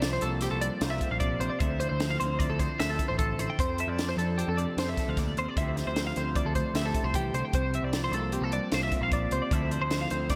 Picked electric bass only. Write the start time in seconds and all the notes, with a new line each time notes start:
Already playing: C2
0.22 C2
0.52 C2
0.81 C2
1.11 A#1
1.40 A#1
1.61 D2
1.91 D2
2.22 D2
2.50 D2
2.80 D2
3.10 A1
3.39 A1
3.59 F2
3.88 F2
4.17 F2
4.48 F2
4.77 F2
5.08 D2
5.37 D#2
5.57 D2
5.87 D2
6.17 D2
6.45 D2
6.74 D2
7.04 C2
7.33 C2
7.53 C2
7.83 C2
8.11 C2
8.41 C2
8.73 C2
9.01 A#1
9.32 C#2
9.51 D2
9.81 D2
10.11 D2